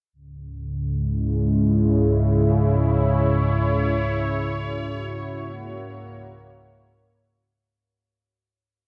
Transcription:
0.13 7.81 C#2 medium
0.13 7.82 G#2 medium
0.13 7.72 C#3 medium
0.69 3.94 G#3 medium
1.00 5.43 E4 medium
1.85 7.72 C#5 medium
4.46 7.71 F#4 medium
5.40 7.73 A#3 medium

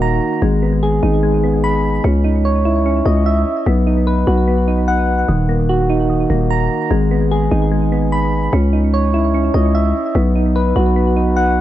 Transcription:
0.00 0.20 D#1 loud
0.00 0.42 D#3 medium
0.00 0.42 A#3 medium
0.00 0.42 D#4 medium
0.00 0.42 F#4 loud
0.00 0.42 A#5 loud
0.42 1.00 G#1 loud
0.42 1.22 G#3 loud
0.63 1.42 B3 medium
0.83 2.04 G#4 loud
1.03 2.00 G#1 loud
1.03 2.04 D#4 medium
1.23 2.04 G#3 medium
1.44 2.04 B3 medium
1.64 2.04 B5 loud
2.04 3.02 C#2 loud
2.04 2.85 C#4 medium
2.24 3.46 D#4 medium
2.45 3.67 C#5 medium
2.65 3.67 E4 medium
2.86 3.67 C#4 loud
3.06 3.45 C#2 loud
3.06 3.66 D#5 medium
3.26 3.66 E5 medium
3.66 4.25 B1 loud
3.66 4.46 B3 loud
3.87 4.67 D#4 medium
4.07 5.29 B4 loud
4.27 5.25 B1 loud
4.27 5.29 F#4 medium
4.48 5.29 B3 medium
4.68 5.29 D#4 medium
4.88 5.28 F#5 loud
5.28 6.26 D#1 loud
5.28 6.08 D#3 loud
5.49 6.29 A#3 medium
5.69 6.91 F#4 loud
5.90 6.91 D#4 medium
6.10 6.91 D#3 medium
6.30 6.69 D#1 loud
6.30 6.91 A#3 medium
6.50 6.91 A#5 loud
6.91 7.49 G#1 loud
6.91 7.70 G#3 loud
7.11 7.91 B3 medium
7.31 8.53 G#4 loud
7.51 8.49 G#1 loud
7.51 8.53 D#4 medium
7.72 8.53 G#3 medium
7.92 8.53 B3 medium
8.12 8.53 B5 loud
8.53 9.50 C#2 loud
8.53 9.33 C#4 medium
8.73 9.95 D#4 medium
8.94 10.15 C#5 medium
9.14 10.15 E4 medium
9.34 10.15 C#4 medium
9.54 9.93 C#2 loud
9.54 10.15 D#5 medium
9.75 10.15 E5 medium
10.15 10.73 B1 loud
10.15 10.95 B3 medium
10.36 11.15 D#4 medium
10.56 11.61 B4 loud
10.76 11.61 B1 loud
10.76 11.61 F#4 medium
10.96 11.61 B3 medium
11.16 11.61 D#4 medium
11.36 11.61 F#5 loud

